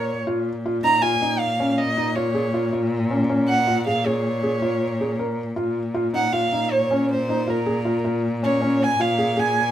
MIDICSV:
0, 0, Header, 1, 4, 480
1, 0, Start_track
1, 0, Key_signature, -5, "minor"
1, 0, Tempo, 379267
1, 344, Time_signature, 7, 2, 24, 8
1, 12295, End_track
2, 0, Start_track
2, 0, Title_t, "Violin"
2, 0, Program_c, 0, 40
2, 0, Note_on_c, 0, 73, 70
2, 242, Note_off_c, 0, 73, 0
2, 1064, Note_on_c, 0, 82, 87
2, 1288, Note_on_c, 0, 80, 84
2, 1307, Note_off_c, 0, 82, 0
2, 1756, Note_on_c, 0, 77, 76
2, 1775, Note_off_c, 0, 80, 0
2, 2153, Note_off_c, 0, 77, 0
2, 2153, Note_on_c, 0, 77, 61
2, 2252, Note_on_c, 0, 75, 78
2, 2270, Note_off_c, 0, 77, 0
2, 2726, Note_on_c, 0, 73, 69
2, 2745, Note_off_c, 0, 75, 0
2, 3452, Note_off_c, 0, 73, 0
2, 4408, Note_on_c, 0, 78, 86
2, 4859, Note_off_c, 0, 78, 0
2, 4896, Note_on_c, 0, 77, 76
2, 5139, Note_on_c, 0, 73, 68
2, 5158, Note_off_c, 0, 77, 0
2, 6578, Note_off_c, 0, 73, 0
2, 7788, Note_on_c, 0, 78, 84
2, 8010, Note_on_c, 0, 77, 82
2, 8029, Note_off_c, 0, 78, 0
2, 8498, Note_on_c, 0, 73, 72
2, 8517, Note_off_c, 0, 77, 0
2, 8978, Note_off_c, 0, 73, 0
2, 9001, Note_on_c, 0, 72, 73
2, 9486, Note_on_c, 0, 70, 65
2, 9505, Note_off_c, 0, 72, 0
2, 10193, Note_off_c, 0, 70, 0
2, 10680, Note_on_c, 0, 73, 76
2, 11173, Note_on_c, 0, 80, 84
2, 11192, Note_off_c, 0, 73, 0
2, 11398, Note_on_c, 0, 77, 77
2, 11417, Note_off_c, 0, 80, 0
2, 11887, Note_on_c, 0, 80, 80
2, 11905, Note_off_c, 0, 77, 0
2, 12295, Note_off_c, 0, 80, 0
2, 12295, End_track
3, 0, Start_track
3, 0, Title_t, "Felt piano"
3, 0, Program_c, 1, 0
3, 342, Note_on_c, 1, 65, 72
3, 602, Note_off_c, 1, 65, 0
3, 830, Note_on_c, 1, 65, 72
3, 958, Note_off_c, 1, 65, 0
3, 1057, Note_on_c, 1, 63, 62
3, 1189, Note_off_c, 1, 63, 0
3, 1295, Note_on_c, 1, 65, 68
3, 1427, Note_off_c, 1, 65, 0
3, 1541, Note_on_c, 1, 63, 57
3, 1801, Note_off_c, 1, 63, 0
3, 2022, Note_on_c, 1, 61, 69
3, 2281, Note_off_c, 1, 61, 0
3, 2495, Note_on_c, 1, 63, 65
3, 2626, Note_off_c, 1, 63, 0
3, 2738, Note_on_c, 1, 65, 65
3, 2868, Note_off_c, 1, 65, 0
3, 2968, Note_on_c, 1, 68, 64
3, 3101, Note_off_c, 1, 68, 0
3, 3214, Note_on_c, 1, 65, 66
3, 3346, Note_off_c, 1, 65, 0
3, 3449, Note_on_c, 1, 65, 60
3, 3712, Note_off_c, 1, 65, 0
3, 3928, Note_on_c, 1, 61, 59
3, 4061, Note_off_c, 1, 61, 0
3, 4170, Note_on_c, 1, 61, 69
3, 4432, Note_off_c, 1, 61, 0
3, 4650, Note_on_c, 1, 65, 61
3, 4782, Note_off_c, 1, 65, 0
3, 4892, Note_on_c, 1, 68, 59
3, 5023, Note_off_c, 1, 68, 0
3, 5131, Note_on_c, 1, 68, 61
3, 5393, Note_off_c, 1, 68, 0
3, 5611, Note_on_c, 1, 68, 67
3, 5742, Note_off_c, 1, 68, 0
3, 5848, Note_on_c, 1, 65, 58
3, 6111, Note_off_c, 1, 65, 0
3, 6339, Note_on_c, 1, 68, 58
3, 6468, Note_off_c, 1, 68, 0
3, 6572, Note_on_c, 1, 70, 62
3, 6834, Note_off_c, 1, 70, 0
3, 7040, Note_on_c, 1, 65, 70
3, 7304, Note_off_c, 1, 65, 0
3, 7522, Note_on_c, 1, 65, 69
3, 7656, Note_off_c, 1, 65, 0
3, 7764, Note_on_c, 1, 63, 60
3, 7898, Note_off_c, 1, 63, 0
3, 8010, Note_on_c, 1, 65, 64
3, 8142, Note_off_c, 1, 65, 0
3, 8256, Note_on_c, 1, 63, 56
3, 8517, Note_off_c, 1, 63, 0
3, 8743, Note_on_c, 1, 61, 66
3, 9001, Note_off_c, 1, 61, 0
3, 9228, Note_on_c, 1, 63, 65
3, 9356, Note_off_c, 1, 63, 0
3, 9460, Note_on_c, 1, 65, 68
3, 9590, Note_off_c, 1, 65, 0
3, 9699, Note_on_c, 1, 68, 61
3, 9829, Note_off_c, 1, 68, 0
3, 9936, Note_on_c, 1, 65, 66
3, 10067, Note_off_c, 1, 65, 0
3, 10181, Note_on_c, 1, 65, 60
3, 10441, Note_off_c, 1, 65, 0
3, 10670, Note_on_c, 1, 61, 61
3, 10798, Note_off_c, 1, 61, 0
3, 10902, Note_on_c, 1, 61, 72
3, 11162, Note_off_c, 1, 61, 0
3, 11387, Note_on_c, 1, 65, 64
3, 11516, Note_off_c, 1, 65, 0
3, 11626, Note_on_c, 1, 68, 61
3, 11755, Note_off_c, 1, 68, 0
3, 11855, Note_on_c, 1, 68, 65
3, 12118, Note_off_c, 1, 68, 0
3, 12295, End_track
4, 0, Start_track
4, 0, Title_t, "Cello"
4, 0, Program_c, 2, 42
4, 0, Note_on_c, 2, 46, 63
4, 349, Note_off_c, 2, 46, 0
4, 349, Note_on_c, 2, 46, 71
4, 7055, Note_off_c, 2, 46, 0
4, 7055, Note_on_c, 2, 46, 67
4, 12295, Note_off_c, 2, 46, 0
4, 12295, End_track
0, 0, End_of_file